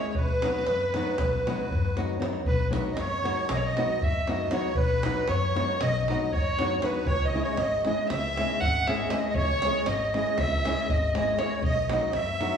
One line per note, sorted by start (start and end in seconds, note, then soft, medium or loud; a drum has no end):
0.00 0.10 C#4 medium
0.00 0.11 E4 medium
0.00 0.11 G#4 medium
0.00 0.10 C#5 medium
0.09 0.15 C#5 medium
0.09 0.17 C#5 medium
0.14 0.46 B1 medium
0.14 1.97 B4 medium
0.14 1.98 B4 loud
0.14 davul low medium
0.29 davul high soft
0.42 0.63 F#3 medium
0.42 0.63 B3 medium
0.42 0.63 D#4 medium
0.42 0.63 F#4 medium
0.42 davul high medium
0.55 davul high soft
0.67 0.98 F#2 medium
0.67 davul high medium
0.80 davul high soft
0.94 1.14 F#3 medium
0.94 1.15 B3 medium
0.94 1.15 D#4 medium
0.94 1.15 F#4 medium
0.94 davul high medium
1.07 davul high soft
1.18 1.51 B1 medium
1.18 davul high medium
1.18 davul low medium
1.33 davul high soft
1.47 1.67 F#3 medium
1.47 1.67 B3 medium
1.47 1.67 D#4 medium
1.47 1.68 F#4 medium
1.47 davul high medium
1.59 davul high soft
1.71 2.16 F#2 loud
1.71 davul low medium
1.85 davul high soft
1.97 2.17 F#3 medium
1.97 2.17 B3 medium
1.97 2.17 D#4 medium
1.97 2.17 F#4 medium
1.97 davul high medium
2.09 davul high soft
2.20 2.40 F#3 medium
2.20 2.40 B3 medium
2.20 2.41 D#4 medium
2.20 2.41 F#4 medium
2.20 davul high medium
2.33 davul high soft
2.45 2.77 B1 loud
2.45 2.72 B4 medium
2.45 davul low medium
2.59 davul high soft
2.71 2.92 F#3 medium
2.71 2.92 B3 medium
2.71 2.92 D#4 medium
2.71 2.93 F#4 medium
2.71 davul high medium
2.75 2.82 B4 medium
2.75 2.83 B4 medium
2.85 davul high soft
2.91 3.01 D#5 medium
2.91 2.97 D#5 medium
2.97 3.29 F#2 medium
2.97 3.51 C#5 medium
2.97 davul high medium
3.11 davul high soft
3.24 3.45 F#3 medium
3.24 3.45 B3 medium
3.24 3.45 D#4 medium
3.24 3.45 F#4 medium
3.24 davul high medium
3.37 davul high soft
3.49 3.81 B1 medium
3.49 3.57 D#5 medium
3.49 3.58 D#5 loud
3.49 davul high medium
3.57 3.68 C#5 medium
3.57 3.64 C#5 medium
3.64 4.02 D#5 medium
3.64 4.05 D#5 medium
3.77 3.97 F#3 medium
3.77 3.97 B3 medium
3.77 3.98 D#4 medium
3.77 3.98 F#4 medium
3.77 davul high medium
3.89 davul high soft
4.01 4.46 F#2 loud
4.01 4.31 E5 medium
4.01 4.29 E5 medium
4.01 davul low medium
4.28 4.47 F#3 medium
4.28 4.47 B3 medium
4.28 4.48 D#4 medium
4.28 4.48 F#4 medium
4.28 4.55 D#5 medium
4.28 4.53 D#5 medium
4.28 davul high medium
4.51 4.71 F#3 medium
4.51 4.71 B3 medium
4.51 4.71 D#4 medium
4.51 4.72 F#4 medium
4.51 4.76 C#5 medium
4.51 davul high medium
4.75 5.07 B1 medium
4.75 5.24 B4 loud
4.75 5.30 B4 loud
4.75 davul low medium
4.89 davul high soft
5.03 5.23 F#3 medium
5.03 5.23 B3 medium
5.03 5.24 D#4 medium
5.03 5.24 F#4 medium
5.03 davul high medium
5.16 davul high soft
5.28 5.60 F#2 loud
5.28 5.80 C#5 medium
5.28 5.82 C#5 loud
5.28 davul high medium
5.42 davul high soft
5.55 5.75 F#3 medium
5.55 5.76 B3 medium
5.55 5.76 D#4 medium
5.55 5.76 F#4 medium
5.55 davul high medium
5.69 davul high soft
5.80 6.12 B1 loud
5.80 6.08 D#5 loud
5.80 6.07 D#5 medium
5.80 davul high medium
6.08 6.28 F#3 medium
6.08 6.29 B3 medium
6.08 6.29 D#4 medium
6.08 6.29 F#4 medium
6.08 6.31 D#5 medium
6.08 6.34 D#5 medium
6.08 davul high medium
6.21 davul high soft
6.32 6.77 F#2 medium
6.32 6.82 C#5 medium
6.32 6.85 C#5 loud
6.32 davul low medium
6.59 6.78 F#3 medium
6.59 6.79 B3 medium
6.59 6.79 D#4 medium
6.59 6.79 F#4 medium
6.59 davul high medium
6.82 7.01 F#3 medium
6.82 7.02 B3 medium
6.82 7.02 D#4 medium
6.82 7.02 F#4 medium
6.82 7.06 B4 medium
6.82 7.08 B4 medium
6.82 davul high medium
7.05 7.37 C#2 loud
7.05 7.25 C#5 loud
7.05 7.27 C#5 loud
7.05 davul low medium
7.19 davul high soft
7.25 7.42 D#5 medium
7.25 7.45 D#5 medium
7.34 7.54 G#3 medium
7.34 7.54 C#4 medium
7.34 7.54 E4 medium
7.34 7.54 G#4 medium
7.42 7.58 C#5 medium
7.42 7.60 C#5 medium
7.42 davul high soft
7.57 7.89 G#1 medium
7.57 7.83 D#5 medium
7.57 7.85 D#5 medium
7.57 davul high medium
7.72 davul high soft
7.85 8.05 G#3 medium
7.85 8.06 C#4 medium
7.85 8.06 E4 medium
7.85 8.06 G#4 medium
7.85 8.08 D#5 medium
7.85 davul high medium
7.98 davul high soft
8.09 8.41 C#2 loud
8.09 8.62 E5 loud
8.09 8.59 E5 loud
8.09 davul high medium
8.37 8.57 G#3 medium
8.37 8.57 C#4 medium
8.37 8.58 E4 medium
8.37 8.58 G#4 medium
8.37 davul high medium
8.50 davul high soft
8.61 9.06 G#1 medium
8.61 8.88 F#5 loud
8.61 8.88 F#5 medium
8.61 davul low medium
8.87 9.07 G#3 medium
8.87 9.08 C#4 medium
8.87 9.08 E4 medium
8.87 9.08 G#4 medium
8.87 9.12 E5 loud
8.87 9.11 E5 medium
8.87 davul high medium
9.10 9.31 G#3 medium
9.10 9.31 C#4 medium
9.10 9.31 E4 medium
9.10 9.32 G#4 medium
9.10 9.28 D#5 medium
9.10 9.27 D#5 medium
9.10 davul high medium
9.28 9.34 D#5 medium
9.28 9.36 D#5 medium
9.34 9.66 C#2 loud
9.34 9.88 C#5 loud
9.34 9.87 C#5 loud
9.34 davul low medium
9.48 davul high soft
9.62 9.82 G#3 medium
9.62 9.83 C#4 medium
9.62 9.83 E4 medium
9.62 9.83 G#4 medium
9.62 davul high medium
9.74 davul high soft
9.86 10.17 G#1 medium
9.86 10.14 D#5 loud
9.86 10.14 D#5 medium
9.86 davul high medium
10.01 davul high soft
10.14 10.34 G#3 medium
10.14 10.34 C#4 medium
10.14 10.35 E4 medium
10.14 10.35 G#4 medium
10.14 10.39 D#5 loud
10.14 10.37 D#5 medium
10.14 davul high medium
10.26 davul high soft
10.38 10.69 C#2 loud
10.38 10.91 E5 loud
10.38 10.90 E5 loud
10.38 davul high medium
10.38 davul low medium
10.52 davul high soft
10.65 10.85 G#3 medium
10.65 10.86 C#4 medium
10.65 10.86 E4 medium
10.65 10.86 G#4 medium
10.65 davul high medium
10.77 davul high soft
10.89 11.34 G#1 loud
10.89 11.15 D#5 loud
10.89 11.15 D#5 medium
10.89 davul low medium
11.03 davul high soft
11.15 11.35 G#3 medium
11.15 11.35 C#4 medium
11.15 11.35 E4 medium
11.15 11.36 G#4 medium
11.15 11.40 D#5 loud
11.15 11.38 D#5 medium
11.15 davul high medium
11.28 davul high soft
11.39 11.58 G#3 medium
11.39 11.58 C#4 medium
11.39 11.59 E4 medium
11.39 11.59 G#4 medium
11.39 11.62 C#5 medium
11.39 11.63 C#5 medium
11.39 davul high medium
11.62 11.94 B1 loud
11.62 11.89 D#5 loud
11.62 davul low medium
11.76 davul high soft
11.89 12.09 F#3 medium
11.89 12.10 B3 medium
11.89 12.10 D#4 medium
11.89 12.10 F#4 medium
11.89 12.15 D#5 medium
11.89 12.13 D#5 medium
11.89 davul high medium
12.01 davul high soft
12.13 12.45 F#2 medium
12.13 12.57 E5 loud
12.13 davul high medium
12.27 davul high soft
12.40 12.57 F#3 medium
12.40 12.57 B3 medium
12.40 12.57 D#4 medium
12.40 12.57 F#4 medium
12.40 davul high medium
12.52 davul high soft